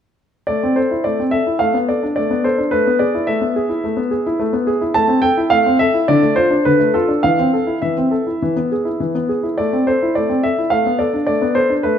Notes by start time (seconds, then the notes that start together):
0.47 A3 D5
0.63 C4
0.76 A4 C5
0.91 E4
1.04 A3 D5
1.20 C4
1.31 A4 E5
1.47 E4
1.59 A3 F5
1.74 B3
1.89 A4 D5
2.03 D4
2.16 A3 D5
2.31 B3
2.44 A4 C5
2.58 D4
2.71 A3 B4
2.87 B3
2.99 G#4 D5
3.15 E4
3.27 A3 E5
3.41 B3
3.56 G#4
3.69 E4
3.84 A3
3.97 B3
4.11 G#4
4.26 E4
4.39 A3
4.53 B3
4.67 G#4
4.81 E4
4.94 A3 A5
5.08 C4
5.22 A4 G5
5.37 E4
5.50 A3 F5
5.66 C4
5.79 A4 E5
5.94 E4
6.08 D3 D5
6.22 A3
6.36 F4 C5
6.50 D4
6.65 D3 B4
6.79 A3
6.94 F4 A4
7.08 D4
7.23 E3 F5
7.39 C4
7.53 A4
7.67 E4
7.82 E3 E5
7.98 C4
8.11 A4
8.27 E4
8.42 E3
8.56 B3
8.72 G#4
8.85 E4
9.00 E3
9.15 B3
9.29 G#4
9.43 E4
9.58 A3 D5
9.73 C4
9.87 A4 C5
10.03 E4
10.15 A3 D5
10.29 C4
10.43 A4 E5
10.58 E4
10.70 A3 F5
10.86 B3
10.99 A4 D5
11.14 D4
11.27 A3 D5
11.42 B3
11.55 A4 C5
11.70 D4
11.83 A3 B4